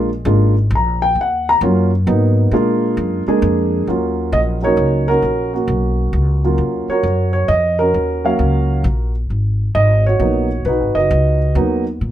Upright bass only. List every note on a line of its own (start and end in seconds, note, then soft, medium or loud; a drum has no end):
0.00 0.24 A#1 medium
0.25 0.69 G#1 medium
0.71 1.15 A#1 medium
1.15 1.60 D#2 medium
1.61 2.05 F#2 loud
2.07 2.51 G#2 medium
2.51 2.96 A#2 medium
2.97 3.25 F#2 medium
3.27 muted upright bass stroke soft
3.42 3.86 F2 loud
3.87 4.31 D#2 medium
4.32 4.76 A#1 medium
4.77 5.21 C#2 medium
5.22 5.67 A#1 medium
5.68 6.12 B1 medium
6.13 6.57 C#2 medium
6.58 6.86 D#2 medium
6.88 muted upright bass stroke soft
7.03 7.47 F#2 medium
7.49 7.93 F2 medium
7.94 8.38 D#2 medium
8.39 8.83 C#2 medium
8.84 9.28 A#1 medium
9.30 9.74 G#1 medium
9.75 10.19 G#1 medium
10.20 10.64 A#1 medium
10.65 10.80 B1 medium
10.80 10.95 G#1 medium
10.95 11.09 F#1 medium
11.11 11.54 C#2 medium
11.55 11.99 D#2 medium
12.01 12.12 A#2 medium